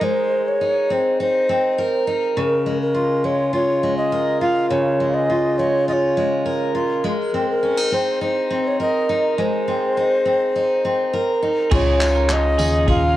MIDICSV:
0, 0, Header, 1, 6, 480
1, 0, Start_track
1, 0, Key_signature, -5, "major"
1, 0, Tempo, 584226
1, 21, Time_signature, 4, 2, 24, 8
1, 10818, End_track
2, 0, Start_track
2, 0, Title_t, "Ocarina"
2, 0, Program_c, 0, 79
2, 32, Note_on_c, 0, 72, 82
2, 394, Note_on_c, 0, 73, 75
2, 406, Note_off_c, 0, 72, 0
2, 760, Note_on_c, 0, 72, 73
2, 772, Note_off_c, 0, 73, 0
2, 992, Note_off_c, 0, 72, 0
2, 997, Note_on_c, 0, 72, 78
2, 1679, Note_off_c, 0, 72, 0
2, 1959, Note_on_c, 0, 70, 74
2, 2288, Note_off_c, 0, 70, 0
2, 2315, Note_on_c, 0, 70, 72
2, 2672, Note_on_c, 0, 73, 78
2, 2685, Note_off_c, 0, 70, 0
2, 2907, Note_off_c, 0, 73, 0
2, 2912, Note_on_c, 0, 73, 86
2, 3245, Note_off_c, 0, 73, 0
2, 3267, Note_on_c, 0, 75, 78
2, 3602, Note_off_c, 0, 75, 0
2, 3626, Note_on_c, 0, 77, 86
2, 3850, Note_off_c, 0, 77, 0
2, 3861, Note_on_c, 0, 73, 76
2, 4226, Note_on_c, 0, 75, 82
2, 4238, Note_off_c, 0, 73, 0
2, 4587, Note_on_c, 0, 73, 82
2, 4599, Note_off_c, 0, 75, 0
2, 4828, Note_off_c, 0, 73, 0
2, 4834, Note_on_c, 0, 75, 72
2, 4872, Note_on_c, 0, 73, 78
2, 4880, Note_off_c, 0, 75, 0
2, 5518, Note_off_c, 0, 73, 0
2, 5805, Note_on_c, 0, 70, 74
2, 6132, Note_off_c, 0, 70, 0
2, 6165, Note_on_c, 0, 70, 80
2, 6526, Note_on_c, 0, 72, 81
2, 6538, Note_off_c, 0, 70, 0
2, 6757, Note_off_c, 0, 72, 0
2, 6762, Note_on_c, 0, 72, 88
2, 7126, Note_on_c, 0, 73, 79
2, 7138, Note_off_c, 0, 72, 0
2, 7235, Note_off_c, 0, 73, 0
2, 7240, Note_on_c, 0, 75, 84
2, 7681, Note_off_c, 0, 75, 0
2, 7720, Note_on_c, 0, 72, 77
2, 9359, Note_off_c, 0, 72, 0
2, 9645, Note_on_c, 0, 73, 83
2, 10125, Note_on_c, 0, 75, 89
2, 10137, Note_off_c, 0, 73, 0
2, 10594, Note_off_c, 0, 75, 0
2, 10598, Note_on_c, 0, 77, 99
2, 10818, Note_off_c, 0, 77, 0
2, 10818, End_track
3, 0, Start_track
3, 0, Title_t, "Clean electric guitar"
3, 0, Program_c, 1, 27
3, 9621, Note_on_c, 1, 68, 97
3, 9851, Note_off_c, 1, 68, 0
3, 9983, Note_on_c, 1, 70, 69
3, 10098, Note_off_c, 1, 70, 0
3, 10337, Note_on_c, 1, 68, 65
3, 10568, Note_off_c, 1, 68, 0
3, 10579, Note_on_c, 1, 68, 82
3, 10695, Note_off_c, 1, 68, 0
3, 10818, End_track
4, 0, Start_track
4, 0, Title_t, "Steel-string acoustic guitar"
4, 0, Program_c, 2, 25
4, 0, Note_on_c, 2, 63, 55
4, 0, Note_on_c, 2, 70, 52
4, 9, Note_on_c, 2, 56, 69
4, 490, Note_off_c, 2, 63, 0
4, 500, Note_on_c, 2, 63, 47
4, 740, Note_on_c, 2, 60, 51
4, 975, Note_off_c, 2, 63, 0
4, 985, Note_on_c, 2, 63, 51
4, 1215, Note_off_c, 2, 60, 0
4, 1225, Note_on_c, 2, 60, 48
4, 1462, Note_off_c, 2, 70, 0
4, 1465, Note_on_c, 2, 70, 54
4, 1692, Note_off_c, 2, 63, 0
4, 1701, Note_on_c, 2, 63, 50
4, 1945, Note_on_c, 2, 49, 68
4, 1992, Note_off_c, 2, 63, 0
4, 1994, Note_off_c, 2, 60, 0
4, 2185, Note_off_c, 2, 56, 0
4, 2185, Note_on_c, 2, 56, 47
4, 2210, Note_off_c, 2, 70, 0
4, 2419, Note_on_c, 2, 65, 50
4, 2659, Note_off_c, 2, 56, 0
4, 2662, Note_on_c, 2, 56, 48
4, 2890, Note_off_c, 2, 65, 0
4, 2900, Note_on_c, 2, 65, 51
4, 3144, Note_off_c, 2, 56, 0
4, 3148, Note_on_c, 2, 56, 48
4, 3387, Note_on_c, 2, 70, 53
4, 3616, Note_off_c, 2, 65, 0
4, 3626, Note_on_c, 2, 65, 52
4, 3856, Note_off_c, 2, 49, 0
4, 3865, Note_on_c, 2, 49, 68
4, 4106, Note_off_c, 2, 56, 0
4, 4109, Note_on_c, 2, 56, 47
4, 4342, Note_off_c, 2, 65, 0
4, 4352, Note_on_c, 2, 65, 45
4, 4590, Note_off_c, 2, 56, 0
4, 4594, Note_on_c, 2, 56, 49
4, 4821, Note_off_c, 2, 65, 0
4, 4831, Note_on_c, 2, 65, 51
4, 5067, Note_off_c, 2, 56, 0
4, 5070, Note_on_c, 2, 56, 53
4, 5301, Note_off_c, 2, 70, 0
4, 5305, Note_on_c, 2, 70, 55
4, 5534, Note_off_c, 2, 65, 0
4, 5544, Note_on_c, 2, 65, 52
4, 5783, Note_off_c, 2, 56, 0
4, 5783, Note_on_c, 2, 56, 68
4, 5787, Note_off_c, 2, 49, 0
4, 5834, Note_off_c, 2, 65, 0
4, 6029, Note_on_c, 2, 60, 52
4, 6054, Note_off_c, 2, 70, 0
4, 6266, Note_on_c, 2, 61, 51
4, 6385, Note_off_c, 2, 61, 0
4, 6385, Note_on_c, 2, 63, 48
4, 6496, Note_off_c, 2, 60, 0
4, 6506, Note_on_c, 2, 60, 52
4, 6737, Note_off_c, 2, 63, 0
4, 6747, Note_on_c, 2, 63, 50
4, 6978, Note_off_c, 2, 60, 0
4, 6987, Note_on_c, 2, 60, 52
4, 7228, Note_on_c, 2, 70, 59
4, 7467, Note_off_c, 2, 63, 0
4, 7470, Note_on_c, 2, 63, 51
4, 7705, Note_off_c, 2, 56, 0
4, 7708, Note_on_c, 2, 56, 69
4, 7941, Note_off_c, 2, 60, 0
4, 7951, Note_on_c, 2, 60, 49
4, 8188, Note_off_c, 2, 63, 0
4, 8192, Note_on_c, 2, 63, 50
4, 8415, Note_off_c, 2, 60, 0
4, 8425, Note_on_c, 2, 60, 48
4, 8669, Note_off_c, 2, 63, 0
4, 8672, Note_on_c, 2, 63, 50
4, 8902, Note_off_c, 2, 60, 0
4, 8912, Note_on_c, 2, 60, 48
4, 9138, Note_off_c, 2, 70, 0
4, 9148, Note_on_c, 2, 70, 56
4, 9384, Note_off_c, 2, 63, 0
4, 9387, Note_on_c, 2, 63, 53
4, 9624, Note_on_c, 2, 49, 80
4, 9625, Note_off_c, 2, 70, 0
4, 9628, Note_on_c, 2, 65, 62
4, 9676, Note_off_c, 2, 60, 0
4, 9863, Note_off_c, 2, 63, 0
4, 9867, Note_on_c, 2, 63, 52
4, 10100, Note_on_c, 2, 61, 57
4, 10333, Note_off_c, 2, 63, 0
4, 10343, Note_on_c, 2, 63, 58
4, 10578, Note_off_c, 2, 65, 0
4, 10581, Note_on_c, 2, 65, 66
4, 10584, Note_off_c, 2, 56, 0
4, 10811, Note_off_c, 2, 63, 0
4, 10818, Note_off_c, 2, 49, 0
4, 10818, Note_off_c, 2, 61, 0
4, 10818, Note_off_c, 2, 65, 0
4, 10818, End_track
5, 0, Start_track
5, 0, Title_t, "Upright bass"
5, 0, Program_c, 3, 32
5, 9629, Note_on_c, 3, 37, 93
5, 10313, Note_off_c, 3, 37, 0
5, 10346, Note_on_c, 3, 39, 75
5, 10818, Note_off_c, 3, 39, 0
5, 10818, End_track
6, 0, Start_track
6, 0, Title_t, "Drums"
6, 9624, Note_on_c, 9, 49, 87
6, 9626, Note_on_c, 9, 36, 110
6, 9706, Note_off_c, 9, 49, 0
6, 9708, Note_off_c, 9, 36, 0
6, 9864, Note_on_c, 9, 54, 63
6, 9866, Note_on_c, 9, 39, 96
6, 9946, Note_off_c, 9, 54, 0
6, 9948, Note_off_c, 9, 39, 0
6, 10100, Note_on_c, 9, 39, 104
6, 10183, Note_off_c, 9, 39, 0
6, 10342, Note_on_c, 9, 54, 65
6, 10424, Note_off_c, 9, 54, 0
6, 10582, Note_on_c, 9, 36, 114
6, 10665, Note_off_c, 9, 36, 0
6, 10818, End_track
0, 0, End_of_file